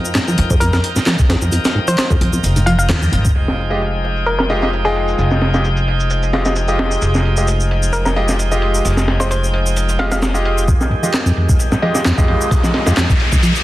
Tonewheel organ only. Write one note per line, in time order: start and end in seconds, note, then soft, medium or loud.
0.00 3.32 F3 medium
0.00 3.32 D#4 medium
0.00 3.34 A#4 medium
0.00 3.32 G5 medium
3.35 10.64 F3 medium
3.35 10.64 G#3 medium
3.35 10.64 D#4 medium
3.35 10.64 G5 medium
10.68 13.63 F2 medium
10.68 13.63 D#3 medium
10.68 13.63 G#3 medium
10.68 13.63 G4 medium